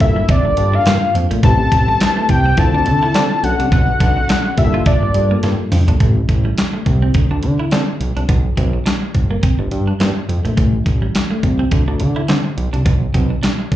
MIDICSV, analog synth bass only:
0, 0, Header, 1, 2, 480
1, 0, Start_track
1, 0, Tempo, 571429
1, 1203, Time_signature, 4, 2, 24, 8
1, 11557, End_track
2, 0, Start_track
2, 0, Title_t, "Analog synth bass"
2, 0, Program_c, 0, 38
2, 4, Note_on_c, 0, 31, 110
2, 184, Note_off_c, 0, 31, 0
2, 378, Note_on_c, 0, 31, 98
2, 457, Note_off_c, 0, 31, 0
2, 482, Note_on_c, 0, 43, 93
2, 663, Note_off_c, 0, 43, 0
2, 723, Note_on_c, 0, 43, 94
2, 824, Note_off_c, 0, 43, 0
2, 964, Note_on_c, 0, 41, 89
2, 1065, Note_off_c, 0, 41, 0
2, 1100, Note_on_c, 0, 34, 85
2, 1178, Note_off_c, 0, 34, 0
2, 1203, Note_on_c, 0, 33, 114
2, 1383, Note_off_c, 0, 33, 0
2, 1443, Note_on_c, 0, 33, 101
2, 1623, Note_off_c, 0, 33, 0
2, 1925, Note_on_c, 0, 36, 102
2, 2105, Note_off_c, 0, 36, 0
2, 2165, Note_on_c, 0, 38, 109
2, 2265, Note_off_c, 0, 38, 0
2, 2299, Note_on_c, 0, 38, 100
2, 2405, Note_on_c, 0, 50, 92
2, 2417, Note_off_c, 0, 38, 0
2, 2585, Note_off_c, 0, 50, 0
2, 2643, Note_on_c, 0, 50, 112
2, 2744, Note_off_c, 0, 50, 0
2, 2884, Note_on_c, 0, 35, 103
2, 2985, Note_off_c, 0, 35, 0
2, 3019, Note_on_c, 0, 36, 87
2, 3098, Note_off_c, 0, 36, 0
2, 3124, Note_on_c, 0, 35, 110
2, 3304, Note_off_c, 0, 35, 0
2, 3364, Note_on_c, 0, 35, 117
2, 3544, Note_off_c, 0, 35, 0
2, 3845, Note_on_c, 0, 31, 103
2, 4025, Note_off_c, 0, 31, 0
2, 4217, Note_on_c, 0, 31, 105
2, 4297, Note_off_c, 0, 31, 0
2, 4322, Note_on_c, 0, 43, 97
2, 4503, Note_off_c, 0, 43, 0
2, 4563, Note_on_c, 0, 43, 104
2, 4664, Note_off_c, 0, 43, 0
2, 4803, Note_on_c, 0, 41, 88
2, 4904, Note_off_c, 0, 41, 0
2, 4937, Note_on_c, 0, 34, 90
2, 5017, Note_off_c, 0, 34, 0
2, 5043, Note_on_c, 0, 33, 109
2, 5224, Note_off_c, 0, 33, 0
2, 5281, Note_on_c, 0, 33, 102
2, 5462, Note_off_c, 0, 33, 0
2, 5765, Note_on_c, 0, 36, 97
2, 5945, Note_off_c, 0, 36, 0
2, 6003, Note_on_c, 0, 38, 91
2, 6104, Note_off_c, 0, 38, 0
2, 6138, Note_on_c, 0, 38, 88
2, 6243, Note_on_c, 0, 50, 84
2, 6256, Note_off_c, 0, 38, 0
2, 6424, Note_off_c, 0, 50, 0
2, 6484, Note_on_c, 0, 50, 99
2, 6585, Note_off_c, 0, 50, 0
2, 6723, Note_on_c, 0, 35, 98
2, 6824, Note_off_c, 0, 35, 0
2, 6858, Note_on_c, 0, 36, 83
2, 6937, Note_off_c, 0, 36, 0
2, 6963, Note_on_c, 0, 35, 98
2, 7143, Note_off_c, 0, 35, 0
2, 7201, Note_on_c, 0, 35, 111
2, 7383, Note_off_c, 0, 35, 0
2, 7684, Note_on_c, 0, 31, 94
2, 7864, Note_off_c, 0, 31, 0
2, 8056, Note_on_c, 0, 31, 94
2, 8136, Note_off_c, 0, 31, 0
2, 8160, Note_on_c, 0, 43, 91
2, 8342, Note_off_c, 0, 43, 0
2, 8400, Note_on_c, 0, 43, 93
2, 8502, Note_off_c, 0, 43, 0
2, 8641, Note_on_c, 0, 41, 77
2, 8743, Note_off_c, 0, 41, 0
2, 8775, Note_on_c, 0, 34, 86
2, 8856, Note_off_c, 0, 34, 0
2, 8883, Note_on_c, 0, 33, 101
2, 9063, Note_off_c, 0, 33, 0
2, 9121, Note_on_c, 0, 33, 105
2, 9303, Note_off_c, 0, 33, 0
2, 9604, Note_on_c, 0, 36, 89
2, 9784, Note_off_c, 0, 36, 0
2, 9842, Note_on_c, 0, 38, 105
2, 9944, Note_off_c, 0, 38, 0
2, 9976, Note_on_c, 0, 38, 95
2, 10082, Note_on_c, 0, 50, 90
2, 10094, Note_off_c, 0, 38, 0
2, 10263, Note_off_c, 0, 50, 0
2, 10322, Note_on_c, 0, 50, 102
2, 10423, Note_off_c, 0, 50, 0
2, 10562, Note_on_c, 0, 35, 94
2, 10663, Note_off_c, 0, 35, 0
2, 10696, Note_on_c, 0, 36, 82
2, 10776, Note_off_c, 0, 36, 0
2, 10801, Note_on_c, 0, 35, 104
2, 10982, Note_off_c, 0, 35, 0
2, 11041, Note_on_c, 0, 35, 109
2, 11222, Note_off_c, 0, 35, 0
2, 11522, Note_on_c, 0, 31, 99
2, 11557, Note_off_c, 0, 31, 0
2, 11557, End_track
0, 0, End_of_file